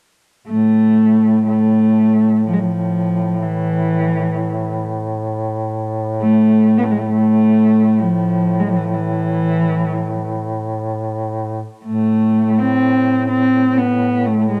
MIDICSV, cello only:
0, 0, Header, 1, 2, 480
1, 0, Start_track
1, 0, Key_signature, 0, "minor"
1, 0, Tempo, 985222
1, 229, Time_signature, 3, 2, 24, 8
1, 1669, Tempo, 921659
1, 5029, Tempo, 977199
1, 7349, End_track
2, 0, Start_track
2, 0, Title_t, "Cello"
2, 0, Program_c, 0, 42
2, 234, Note_on_c, 0, 57, 82
2, 697, Note_off_c, 0, 57, 0
2, 714, Note_on_c, 0, 57, 72
2, 1180, Note_off_c, 0, 57, 0
2, 1200, Note_on_c, 0, 53, 68
2, 1234, Note_on_c, 0, 56, 58
2, 1241, Note_off_c, 0, 53, 0
2, 1263, Note_on_c, 0, 53, 69
2, 1270, Note_off_c, 0, 56, 0
2, 1669, Note_on_c, 0, 52, 66
2, 1677, Note_off_c, 0, 53, 0
2, 2396, Note_off_c, 0, 52, 0
2, 3122, Note_on_c, 0, 57, 89
2, 3414, Note_on_c, 0, 59, 79
2, 3422, Note_off_c, 0, 57, 0
2, 3445, Note_on_c, 0, 57, 74
2, 3453, Note_off_c, 0, 59, 0
2, 3484, Note_on_c, 0, 56, 70
2, 3492, Note_off_c, 0, 57, 0
2, 3521, Note_on_c, 0, 57, 74
2, 3529, Note_off_c, 0, 56, 0
2, 3572, Note_off_c, 0, 57, 0
2, 3577, Note_on_c, 0, 57, 89
2, 4060, Note_on_c, 0, 53, 79
2, 4068, Note_off_c, 0, 57, 0
2, 4360, Note_on_c, 0, 56, 65
2, 4368, Note_off_c, 0, 53, 0
2, 4408, Note_on_c, 0, 53, 65
2, 4416, Note_off_c, 0, 56, 0
2, 4447, Note_on_c, 0, 52, 62
2, 4454, Note_off_c, 0, 53, 0
2, 4489, Note_on_c, 0, 53, 59
2, 4497, Note_off_c, 0, 52, 0
2, 4537, Note_on_c, 0, 52, 72
2, 4545, Note_off_c, 0, 53, 0
2, 5261, Note_off_c, 0, 52, 0
2, 5997, Note_on_c, 0, 57, 71
2, 6361, Note_on_c, 0, 60, 81
2, 6368, Note_off_c, 0, 57, 0
2, 6701, Note_off_c, 0, 60, 0
2, 6704, Note_on_c, 0, 60, 78
2, 6944, Note_on_c, 0, 59, 72
2, 6951, Note_off_c, 0, 60, 0
2, 7181, Note_on_c, 0, 57, 67
2, 7189, Note_off_c, 0, 59, 0
2, 7295, Note_off_c, 0, 57, 0
2, 7298, Note_on_c, 0, 56, 61
2, 7349, Note_off_c, 0, 56, 0
2, 7349, End_track
0, 0, End_of_file